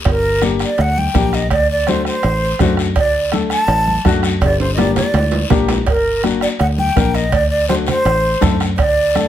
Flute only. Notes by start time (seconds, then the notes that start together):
0.10 A#4
0.63 D5
0.81 F#5
0.98 G5
1.34 D#5
1.51 D5
1.70 D5
1.88 C5
2.06 C5
2.97 D5
3.51 A5
4.42 D5
4.60 C5
4.74 D#5
4.78 D5
4.95 D5
5.88 A#4
6.42 D5
6.60 F#5
6.79 G5
7.15 D#5
7.33 D5
7.50 D5
7.69 C5
7.87 C5
8.78 D5